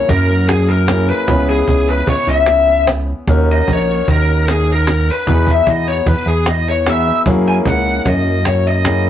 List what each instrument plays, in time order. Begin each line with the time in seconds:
Already playing: grand piano A#3 C#4 E4 G#4
0.09 analog synth bass F#2, lead electric guitar A#4, cajon bass
0.29 cajon slap
0.48 lead electric guitar G#4, cajon slap
0.69 lead electric guitar A#4, cajon slap
0.88 grand piano A#3 C#4 E4 G#4, cajon slap
1.08 lead electric guitar B4, cajon slap
1.28 analog synth bass C#2, grand piano B3 C#4 E4 G#4, cajon bass
1.48 lead electric guitar G#4, cajon slap
1.68 analog synth bass C#2, cajon bass
1.88 lead electric guitar B4, cajon slap
2.07 analog synth bass C#2, lead electric guitar C#5, cajon bass, cajon slap
2.27 analog synth bass C#2, lead electric guitar E5, cajon slap
2.46 cajon slap
2.67 cajon slap
2.87 cajon slap
3.08 cajon slap
3.27 analog synth bass D#2, grand piano C#4 D#4 F#4 A#4, cajon bass
3.48 lead electric guitar D#5, cajon slap
3.68 analog synth bass A#1, cajon bass
3.73 lead electric guitar C#5
3.89 cajon slap
4.08 analog synth bass D#2, lead electric guitar A#4, cajon bass
4.29 cajon slap
4.48 lead electric guitar G#4, cajon slap
4.68 cajon slap
4.72 lead electric guitar A#4
4.87 cajon slap
5.08 cajon slap
5.12 lead electric guitar B4
5.27 analog synth bass E2, grand piano B3 D#4 F#4 G#4, cajon bass
5.47 lead electric guitar E5, cajon bass
5.67 analog synth bass E2, lead electric guitar D#5, cajon bass
5.87 lead electric guitar C#5, cajon slap
6.06 analog synth bass E2, lead electric guitar B4, cajon bass
6.26 analog synth bass E2, lead electric guitar G#4, cajon slap
6.46 lead electric guitar D#5, cajon slap
6.67 lead electric guitar C#5, cajon slap
6.86 grand piano B3 D#4 F#4 G#4, lead electric guitar E5, cajon slap
7.07 cajon slap
7.26 analog synth bass F#2, grand piano A#3 C#4 E4 G#4, cajon bass
7.46 lead electric guitar G#5, cajon slap
7.65 analog synth bass C#2, lead electric guitar F#5, cajon bass
7.86 cajon slap
8.06 analog synth bass F#2, lead electric guitar D#5, cajon bass
8.26 cajon slap
8.45 lead electric guitar C#5, cajon slap
8.66 lead electric guitar D#5, cajon slap
8.85 grand piano A#3 C#4 E4 G#4, cajon slap
9.05 cajon slap